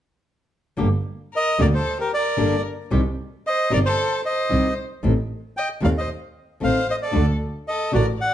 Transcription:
0.77 1.01 G1 medium
0.77 0.87 D3 medium
0.77 0.87 G3 medium
0.77 0.87 A#3 medium
0.77 0.87 D4 medium
0.77 0.87 G4 medium
1.34 1.58 A#4 medium
1.34 1.61 D#5 medium
1.58 1.81 D2 medium
1.58 1.67 D3 medium
1.58 1.67 G3 medium
1.58 1.67 A#3 medium
1.58 1.68 D4 medium
1.58 1.68 G4 medium
1.58 1.66 A#4 medium
1.58 1.67 D5 medium
1.75 1.98 A4 medium
1.75 1.98 C5 medium
2.00 2.12 G4 medium
2.00 2.12 A#4 medium
2.14 2.63 A#4 medium
2.14 2.62 D5 medium
2.37 2.61 G1 soft
2.37 2.54 D3 medium
2.37 2.54 G3 medium
2.37 2.54 A#3 medium
2.37 2.55 D4 medium
2.37 2.55 G4 medium
2.90 3.14 C2 medium
2.90 3.00 C3 medium
2.90 3.00 D#3 medium
2.90 3.00 G3 medium
2.90 3.00 C4 medium
2.90 3.00 G4 medium
3.47 3.70 C5 medium
3.47 3.73 D#5 medium
3.70 3.94 G1 medium
3.70 3.79 C3 medium
3.70 3.79 D#3 medium
3.70 3.80 G3 medium
3.70 3.80 C4 medium
3.70 3.80 G4 medium
3.70 3.78 A#4 medium
3.70 3.79 D5 medium
3.86 4.22 A4 medium
3.86 4.22 C5 medium
4.26 4.74 C5 medium
4.26 4.74 D#5 medium
4.49 4.73 C2 medium
4.49 4.67 C3 medium
4.49 4.67 D#3 soft
4.49 4.67 G3 medium
4.49 4.67 C4 medium
4.49 4.67 G4 medium
5.03 5.26 A1 medium
5.03 5.12 D#3 medium
5.03 5.12 A3 medium
5.03 5.12 C4 medium
5.57 5.69 D#5 medium
5.57 5.69 G5 medium
5.80 6.05 D#2 medium
5.80 5.90 D#3 medium
5.80 5.91 A3 medium
5.80 5.91 C4 medium
5.80 5.90 F5 medium
5.84 5.90 D5 medium
5.98 6.11 C5 medium
5.98 6.09 D#5 medium
6.60 6.84 A1 soft
6.60 6.78 D#3 medium
6.60 6.78 A3 medium
6.60 6.78 C4 medium
6.60 6.87 C5 medium
6.60 6.87 F5 medium
6.90 6.95 C5 medium
6.90 6.96 D#5 medium
7.02 7.27 A4 soft
7.02 7.26 D5 medium
7.11 7.22 D3 medium
7.11 7.22 A3 medium
7.11 7.22 D4 medium
7.11 7.22 F#4 medium
7.16 7.37 D2 medium
7.68 7.93 A4 medium
7.68 7.92 D#5 medium
7.92 8.16 A1 medium
7.92 8.02 D3 medium
7.92 8.02 A3 medium
7.92 8.02 D4 medium
7.92 8.02 F#4 medium
7.92 8.07 A#4 medium
7.92 8.06 D5 medium
8.21 8.34 D5 medium
8.21 8.34 F#5 medium

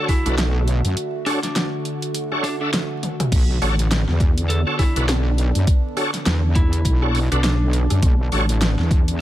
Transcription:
0.00 9.21 D3 medium
0.00 3.28 A3 medium
0.00 0.14 D4 medium
0.00 0.14 F#4 medium
0.00 3.32 F#4 medium
0.00 0.14 A4 medium
0.00 0.14 C#5 medium
0.09 0.34 E4 medium
0.09 kick medium
0.09 cross-stick soft
0.09 open hi-hat medium
0.26 0.82 B1 loud
0.26 0.36 D4 medium
0.26 0.36 F#4 medium
0.26 0.36 A4 medium
0.26 0.36 B4 loud
0.26 closed hi-hat soft
0.38 snare loud
0.38 closed hi-hat medium
0.68 closed hi-hat soft
0.85 0.95 F#2 medium
0.85 closed hi-hat medium
0.97 closed hi-hat medium
1.26 1.40 D4 loud
1.26 1.40 D4 medium
1.26 1.40 F#4 medium
1.26 1.40 A4 medium
1.26 1.40 C#5 loud
1.26 cross-stick medium
1.26 open hi-hat medium
1.43 1.68 D4 medium
1.43 snare soft
1.43 closed hi-hat medium
1.56 snare loud
1.56 closed hi-hat medium
1.85 closed hi-hat soft
2.02 closed hi-hat medium
2.14 closed hi-hat medium
2.32 2.49 D4 medium
2.32 2.49 F#4 medium
2.32 2.49 A4 medium
2.32 2.49 C#5 medium
2.32 cross-stick soft
2.44 2.55 D4 medium
2.44 open hi-hat medium
2.61 2.69 D4 medium
2.61 2.71 D4 medium
2.61 2.71 F#4 medium
2.61 2.71 A4 medium
2.61 2.71 E5 medium
2.73 snare loud
2.73 closed hi-hat medium
3.03 closed hi-hat soft
3.03 high tom medium
3.20 cross-stick soft
3.20 closed hi-hat medium
3.20 mid tom medium
3.32 3.60 B1 loud
3.32 9.21 B3 medium
3.32 9.21 D4 medium
3.32 kick loud
3.32 closed hi-hat medium
3.32 crash medium
3.61 4.05 A1 loud
3.61 3.76 D4 medium
3.61 3.76 F#4 medium
3.61 3.76 A4 medium
3.61 3.75 C#5 loud
3.61 open hi-hat medium
3.79 closed hi-hat medium
3.91 snare loud
3.91 closed hi-hat medium
4.08 4.64 E2 loud
4.08 snare soft
4.20 kick loud
4.20 closed hi-hat soft
4.38 closed hi-hat medium
4.50 4.61 A4 medium
4.50 closed hi-hat medium
4.67 4.84 D4 medium
4.67 4.84 F#4 medium
4.67 4.75 A4 medium
4.67 4.84 A4 medium
4.67 4.84 C#5 medium
4.79 5.05 E4 medium
4.79 kick medium
4.79 cross-stick medium
4.79 open hi-hat medium
4.96 5.52 B1 loud
4.96 5.06 D4 medium
4.96 5.06 F#4 medium
4.96 5.06 A4 medium
4.96 5.06 B4 loud
4.96 closed hi-hat medium
5.09 snare loud
5.09 closed hi-hat medium
5.38 closed hi-hat soft
5.55 5.65 F#2 loud
5.55 closed hi-hat medium
5.67 kick loud
5.67 closed hi-hat medium
5.97 6.11 D4 medium
5.97 6.11 F#4 medium
5.97 6.11 A4 medium
5.97 6.11 C#5 loud
5.97 cross-stick medium
5.97 open hi-hat medium
6.14 snare soft
6.14 closed hi-hat medium
6.26 6.83 E2 loud
6.26 snare loud
6.26 closed hi-hat medium
6.55 7.28 E4 medium
6.55 kick loud
6.55 closed hi-hat soft
6.73 closed hi-hat medium
6.85 7.29 B1 loud
6.85 kick medium
6.85 closed hi-hat medium
7.02 7.20 D4 medium
7.02 7.20 F#4 medium
7.02 7.20 A4 medium
7.02 7.20 C#5 medium
7.02 cross-stick soft
7.15 open hi-hat medium
7.31 7.88 B1 loud
7.31 7.42 D4 medium
7.31 8.13 D4 medium
7.31 7.42 F#4 medium
7.31 7.42 A4 medium
7.31 7.42 B4 loud
7.31 closed hi-hat medium
7.44 snare loud
7.44 closed hi-hat medium
7.73 closed hi-hat soft
7.90 8.01 F#2 medium
7.90 cross-stick soft
7.90 closed hi-hat medium
8.03 8.30 B1 loud
8.03 kick loud
8.03 closed hi-hat medium
8.32 8.76 A1 loud
8.32 8.46 D4 loud
8.32 8.46 F#4 medium
8.32 8.46 A4 medium
8.32 8.46 C#5 loud
8.32 open hi-hat medium
8.49 closed hi-hat medium
8.61 snare loud
8.61 closed hi-hat medium
8.78 9.21 E2 medium
8.78 snare soft
8.91 kick loud
8.91 closed hi-hat soft
9.08 closed hi-hat medium

